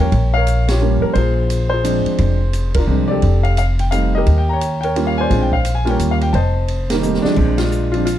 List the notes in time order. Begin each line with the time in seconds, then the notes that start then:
Already playing: G5
0.00 E2 A#4 C#5
0.12 A#1, kick, ride
0.34 A#4 C#5 F5
0.47 hi-hat pedal, ride
0.68 F4 G4 C#5, snare, ride
0.81 F3 G3 A#3 C#4
1.02 A#4, muted upright bass stroke
1.13 A#1 F4 G#4 C5, kick, ride
1.50 hi-hat pedal, ride
1.70 F4 G#4 C5
1.84 F3 G#3 C4 D4, hi-hat pedal, ride
2.06 muted upright bass stroke, ride
2.18 F1, kick, ride
2.53 hi-hat pedal, ride
2.74 F4 A#4, kick, ride
2.78 D4
2.87 C2 F3 G#3 C4 D4
3.08 A4 D5
3.12 G4
3.22 F1, kick, ride
3.43 F5, ride
3.57 F5, hi-hat pedal, ride
3.79 G5, ride
3.91 G3 A3 C4 D#4 F5, hi-hat pedal, ride
4.15 G4 A#4 D#5
4.26 D#2, kick, ride
4.38 G5
4.49 C#5 G5 A#5
4.61 hi-hat pedal, ride
4.81 A#4 C#5 G5, ride
4.96 G3 A#3 C#4 F4, ride
5.07 F5
5.18 C5 D5 G#5
5.30 A#1 G#3 C4 D4 F4, kick, ride
5.42 G5
5.52 F5, kick
5.65 hi-hat pedal, ride
5.75 G#5
5.85 G3 A#3 C#4 F4 G5, ride
5.90 A#4 C#5
5.99 D#2, hi-hat pedal, ride
6.11 F5
6.21 G5, ride
6.33 F1 C5 D#5 A5, kick, ride
6.68 ride
6.90 D#3 G3 A#3, snare, ride
7.02 G3 A3 C4 D#4, hi-hat pedal
7.14 snare
7.22 F3 G#3 D4, muted upright bass stroke, snare
7.36 A#1 F3 G#3 C4 D4, kick, crash
7.58 G#3 D4 F4, snare, ride
7.71 hi-hat pedal
7.92 F3 G#3 C4 D4 F4, ride
8.05 F4, hi-hat pedal, ride